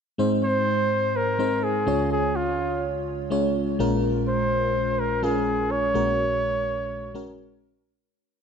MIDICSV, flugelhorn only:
0, 0, Header, 1, 2, 480
1, 0, Start_track
1, 0, Tempo, 480000
1, 190, Time_signature, 4, 2, 24, 8
1, 8420, End_track
2, 0, Start_track
2, 0, Title_t, "Flugelhorn"
2, 0, Program_c, 0, 56
2, 440, Note_on_c, 0, 72, 104
2, 1161, Note_on_c, 0, 70, 91
2, 1176, Note_off_c, 0, 72, 0
2, 1638, Note_on_c, 0, 68, 81
2, 1653, Note_off_c, 0, 70, 0
2, 2114, Note_off_c, 0, 68, 0
2, 2120, Note_on_c, 0, 68, 87
2, 2358, Note_on_c, 0, 65, 75
2, 2372, Note_off_c, 0, 68, 0
2, 2834, Note_off_c, 0, 65, 0
2, 4281, Note_on_c, 0, 72, 94
2, 4996, Note_on_c, 0, 70, 83
2, 5011, Note_off_c, 0, 72, 0
2, 5233, Note_on_c, 0, 68, 91
2, 5248, Note_off_c, 0, 70, 0
2, 5712, Note_on_c, 0, 73, 106
2, 5726, Note_off_c, 0, 68, 0
2, 7631, Note_off_c, 0, 73, 0
2, 8420, End_track
0, 0, End_of_file